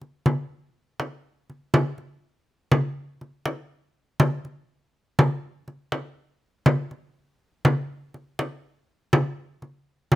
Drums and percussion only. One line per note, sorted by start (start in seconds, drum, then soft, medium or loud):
0.01 frame drum soft
0.26 frame drum soft
1.00 frame drum soft
1.50 frame drum soft
1.74 frame drum medium
1.98 frame drum soft
2.72 frame drum medium
3.21 frame drum soft
3.46 frame drum soft
4.20 frame drum medium
4.45 frame drum soft
5.19 frame drum medium
5.68 frame drum soft
5.92 frame drum medium
6.66 frame drum medium
6.91 frame drum soft
7.65 frame drum medium
8.14 frame drum soft
8.39 frame drum medium
9.13 frame drum medium
9.62 frame drum soft
10.12 frame drum medium